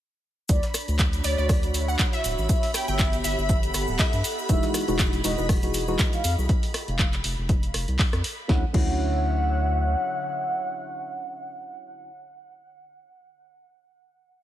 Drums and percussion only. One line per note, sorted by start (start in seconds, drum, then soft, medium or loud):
0.49 kick loud
0.49 closed hi-hat medium
0.49 cabasa soft
0.49 shaker medium
0.63 snare soft
0.63 closed hi-hat soft
0.63 cabasa soft
0.74 cross-stick medium
0.74 open hi-hat loud
0.74 cabasa medium
0.74 shaker medium
0.88 closed hi-hat soft
0.88 cabasa soft
0.99 kick loud
0.99 snare loud
0.99 clap loud
0.99 closed hi-hat medium
0.99 cabasa soft
0.99 shaker medium
1.13 closed hi-hat soft
1.13 cabasa soft
1.24 open hi-hat loud
1.24 cabasa medium
1.24 shaker medium
1.38 cabasa soft
1.49 kick loud
1.49 cross-stick medium
1.49 closed hi-hat medium
1.49 open hi-hat medium
1.49 cabasa soft
1.63 closed hi-hat soft
1.63 cabasa soft
1.74 open hi-hat medium
1.74 cabasa medium
1.74 shaker medium
1.89 cabasa soft
1.99 kick loud
1.99 snare loud
1.99 clap loud
1.99 closed hi-hat medium
1.99 cabasa soft
1.99 shaker medium
2.13 closed hi-hat soft
2.13 cabasa soft
2.24 open hi-hat loud
2.24 cabasa medium
2.24 shaker medium
2.38 cabasa soft
2.49 kick loud
2.49 closed hi-hat medium
2.49 cabasa medium
2.49 shaker medium
2.63 snare soft
2.63 open hi-hat medium
2.63 cabasa soft
2.74 cross-stick medium
2.74 open hi-hat loud
2.74 cabasa medium
2.74 shaker medium
2.88 closed hi-hat soft
2.88 cabasa soft
2.99 kick loud
2.99 snare loud
2.99 clap loud
2.99 closed hi-hat medium
2.99 cabasa medium
2.99 shaker medium
3.13 closed hi-hat soft
3.13 cabasa soft
3.24 open hi-hat loud
3.24 cabasa medium
3.24 shaker medium
3.39 cabasa soft
3.49 kick loud
3.49 closed hi-hat medium
3.49 cabasa soft
3.49 shaker medium
3.63 closed hi-hat medium
3.63 cabasa soft
3.74 cross-stick medium
3.74 open hi-hat loud
3.74 cabasa medium
3.74 shaker medium
3.88 cabasa soft
3.98 kick loud
3.98 snare loud
3.98 clap loud
3.98 open hi-hat medium
3.98 cabasa medium
3.98 shaker medium
4.13 closed hi-hat soft
4.13 cabasa soft
4.24 open hi-hat loud
4.24 cabasa medium
4.24 shaker medium
4.39 cabasa soft
4.49 kick loud
4.49 closed hi-hat medium
4.49 cabasa medium
4.49 shaker medium
4.63 snare soft
4.63 closed hi-hat soft
4.63 cabasa soft
4.74 cross-stick medium
4.74 open hi-hat loud
4.74 cabasa medium
4.74 shaker medium
4.88 closed hi-hat soft
4.88 cabasa soft
4.99 kick loud
4.99 snare loud
4.99 clap loud
4.99 closed hi-hat medium
4.99 cabasa medium
4.99 shaker medium
5.13 closed hi-hat soft
5.13 cabasa soft
5.24 open hi-hat loud
5.24 cabasa medium
5.24 shaker medium
5.38 cabasa soft
5.49 kick loud
5.49 cross-stick medium
5.49 closed hi-hat medium
5.49 open hi-hat medium
5.49 cabasa soft
5.63 closed hi-hat soft
5.63 cabasa soft
5.74 open hi-hat loud
5.74 cabasa medium
5.74 shaker medium
5.88 cabasa soft
5.99 kick loud
5.99 snare loud
5.99 clap loud
5.99 closed hi-hat medium
5.99 cabasa soft
5.99 shaker medium
6.13 closed hi-hat soft
6.13 cabasa soft
6.24 open hi-hat loud
6.24 cabasa medium
6.24 shaker medium
6.39 cabasa soft
6.49 kick loud
6.49 closed hi-hat medium
6.63 open hi-hat medium
6.74 cross-stick medium
6.74 open hi-hat loud
6.88 closed hi-hat soft
6.99 kick loud
6.99 clap loud
6.99 closed hi-hat medium
7.13 clap soft
7.13 closed hi-hat soft
7.24 open hi-hat loud
7.49 kick loud
7.49 closed hi-hat medium
7.63 closed hi-hat soft
7.74 cross-stick medium
7.74 open hi-hat loud
7.88 closed hi-hat soft
7.99 kick loud
7.99 clap loud
7.99 open hi-hat medium
8.13 cross-stick medium
8.13 closed hi-hat soft
8.24 open hi-hat loud
8.49 kick loud
8.49 snare medium
8.74 kick loud
8.74 crash medium